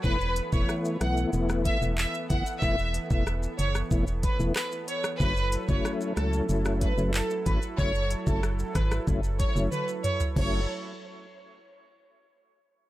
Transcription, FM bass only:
X:1
M:4/4
L:1/16
Q:1/4=93
K:F#m
V:1 name="FM bass" clef=bass
E,,,3 E,,, z2 B,,,2 E,,,3 E,,,2 z F,,, z | E,,,3 E,,,3 F,,,2 E,,,3 E,,, z4 | F,,,3 F,,, z2 C,,2 F,,,3 F,,,2 z G,,, z | F,,,3 F,,,3 G,,,2 F,,,3 F,,, z4 |
F,,,2 z12 z2 |]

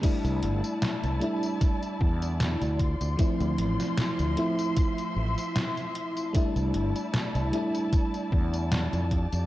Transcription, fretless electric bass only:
X:1
M:4/4
L:1/16
Q:"Swing 16ths" 1/4=76
K:C
V:1 name="Fretless electric bass" clef=bass
z C,, G,,, z2 C,, z4 E,,3 D,,2 D,, | z D,, A,,, z2 D,, z4 A,,, z4 z | z C,, G,,, z2 C,, z4 E,,3 F,,2 F,, |]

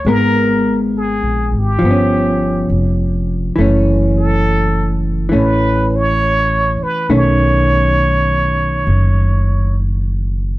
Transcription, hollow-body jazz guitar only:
X:1
M:4/4
L:1/8
Q:"Swing" 1/4=68
K:F#phr
V:1 name="Hollow-body jazz guitar"
[^G,B,^A]4 [=F,B,C]4 | [E,A,C]4 [E,A,C]4 | [^D,A,C]8 |]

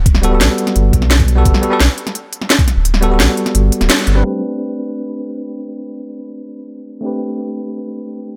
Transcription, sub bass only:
X:1
M:4/4
L:1/16
Q:1/4=172
K:Ador
V:1 name="Sub bass" clef=bass
D,,,4 B,,, z3 G,,,2 B,,,6 | G,,, z3 B,,, z8 z2 D,,,- | D,,,4 B,,, z3 G,,,2 z D,,, z2 G,,,2 | z16 |
z16 | z16 |]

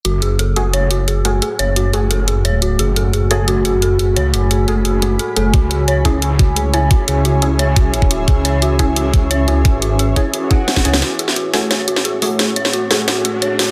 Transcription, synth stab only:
X:1
M:4/4
L:1/8
Q:1/4=175
K:F#m
V:1 name="Synth stab"
z3 [A,FG]4 [A,FG]- | [A,FG]3 [A,FG] z4 | z3 [A,FG]4 z | z3 [A,FG] z [A,FG] z [A,FG] |
z3 [CEG]4 [CEG]- | [CEG]3 [CEG] z4 | z3 [CEG]4 [CEG]- | [CEG]3 [CEG] z [CEG] z [CEG] |
z3 [A,FG]4 [A,FG]- | [A,FG]3 [A,FG] z4 |]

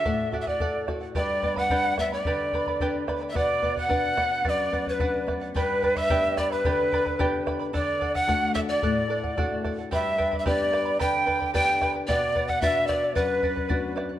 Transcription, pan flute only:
X:1
M:2/4
L:1/16
Q:1/4=110
K:Glyd
V:1 name="Pan flute"
e2- e/2 e/2 d3 z2 | d3 f3 e d- | d6 z3/2 e/2 | d3 f4- f |
d3 B3 z2 | B3 e3 d B- | B6 z2 | d3 f3 e d- |
d6 z2 | e3- e/2 e/2 d4 | g4 g3 z | d3 f e2 d2 |
B6 z2 |]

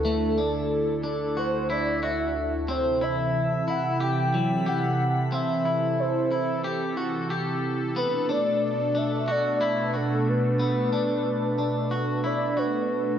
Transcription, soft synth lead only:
X:1
M:4/4
L:1/16
Q:1/4=91
K:Clyd
V:1 name="Soft synth lead"
A8 c2 d2 e3 z | c2 e4 f2 g4 f4 | e4 c4 z8 | B2 d4 e2 d3 B A2 B2- |
B8- B2 d2 B4 |]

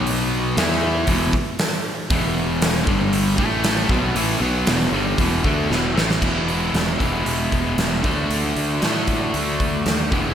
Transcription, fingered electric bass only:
X:1
M:4/4
L:1/8
Q:1/4=116
K:Bmix
V:1 name="Fingered electric bass" clef=bass
B,,,2 E,,2 E,,, z3 | E,,,3 =G,,,2 A,,,2 B,,, | A,,, B,,, E,,, =G,,, E,,, =D,, E,,, A,,, | [K:Emix] E,,,2 E,,, E,,, E,,, E,,, E,,, D,, |
D,, D,, A,,2 D,,2 ^D,, E,,, |]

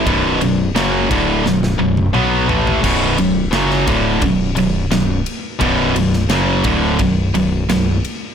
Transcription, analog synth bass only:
X:1
M:4/4
L:1/8
Q:1/4=86
K:Bm
V:1 name="Analog synth bass" clef=bass
B,,,, B,,,, F,,, D,,, B,,,, B,,,, B,,, A,,, | B,,,, B,,,, F,,, D,,, B,,,, B,,,, B,,,, z | B,,,, B,,,, F,,, D,,, B,,,, B,,,, B,,,, z |]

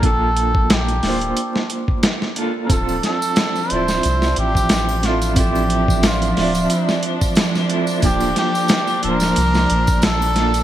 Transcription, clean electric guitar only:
X:1
M:4/4
L:1/8
Q:"Swing 16ths" 1/4=90
K:Dm
V:1 name="Clean electric guitar"
[B,DFA]3 [B,DFc]4 [B,DFA] | [CEFA]3 [CEFd]4 [CEFA] | [CEFA]3 [CFde]4 [CEFA] | [B,DFA]3 [B,DFc]4 [B,DFA] |]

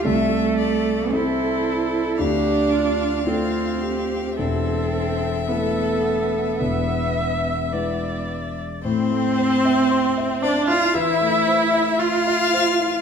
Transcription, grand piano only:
X:1
M:4/4
L:1/16
Q:1/4=55
K:Am
V:1 name="Grand piano"
[C,,C,]4 [CEA]4 [D,,D,]4 [A,FA]4 | [E,,,E,,]4 [A,EA]4 [E,,,E,,]4 [^G,EB]4 | A,, A, c e c' e c E E, A, c e c' e c E |]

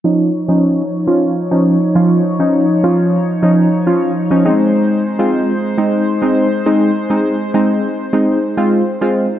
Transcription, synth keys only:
X:1
M:4/4
L:1/16
Q:1/4=102
K:Dblyd
V:1 name="Synth keys"
[F,DE]2 z [F,DE]2 z2 [F,DF]2 z [F,DE]2 z [F,DF]2 z | [F,DE]2 z [F,DF]2 z2 [F,DE]2 z [F,DF]2 z [F,DE] [A,CE]2- | [A,CE]2 z [A,CF]2 z2 [A,CE]2 z [A,CE]2 z [A,CE]2 z | [A,CE]2 z [A,CE]2 z2 [A,CE]2 z [A,CF]2 z [A,CF]2 z |]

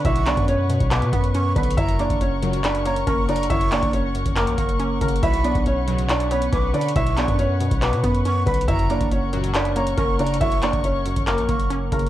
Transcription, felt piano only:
X:1
M:4/4
L:1/8
Q:1/4=139
K:Bm
V:1 name="Felt piano"
[Ee] [Dd] [Cc]2 [B,B]3 [B,B] | [Ee] [Dd] [Cc]2 [Dd] [Cc] [^A,^A] [Dd] | [Ee] [Dd] [Cc]2 [^A,^A]3 [A,A] | [Ee] [Dd] [Cc]2 [Dd] [Cc] [B,B] [Dd] |
[Ee] [Dd] [Cc]2 [B,B]3 [B,B] | [Ee] [Dd] [Cc]2 [Dd] [Cc] [^A,^A] [Dd] | [Ee] [Dd] [Cc]2 [^A,^A]3 [A,A] |]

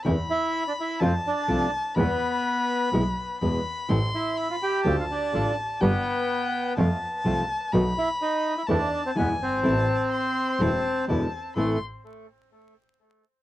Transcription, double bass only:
X:1
M:4/4
L:1/8
Q:1/4=125
K:Am
V:1 name="Double bass" clef=bass
E,, z3 F,, z C,, z | E,, z3 B,,, z E,, z | A,,, z3 D,, z A,,, z | G,,, z3 F,, z C,, z |
B,,, z3 E,, z E,, G,,, | A,,, z3 E,,, z E,, z | A,,, z6 z |]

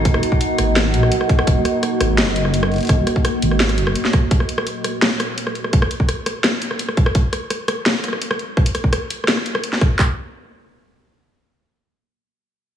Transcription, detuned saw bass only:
X:1
M:4/4
L:1/8
Q:1/4=169
K:Ebm
V:1 name="Detuned saw bass" clef=bass
E,,, z2 A,,,2 B,,, z2 | E,,, z2 A,,, G,,,3 z | E,,, z2 A,,,2 G,,, z2 | z8 |
z8 | z8 | z8 | z8 |
z8 |]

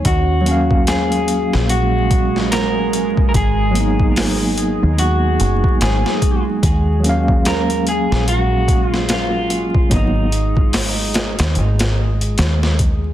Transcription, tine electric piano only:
X:1
M:4/4
L:1/8
Q:"Swing 16ths" 1/4=73
K:Ebm
V:1 name="Tine electric piano"
z [G,B,Df]6- [G,B,Df] | z [G,B,CE]6- [G,B,CE] | z [G,B,Df]6- [G,B,Df] | [G,B,CE] z6 z |]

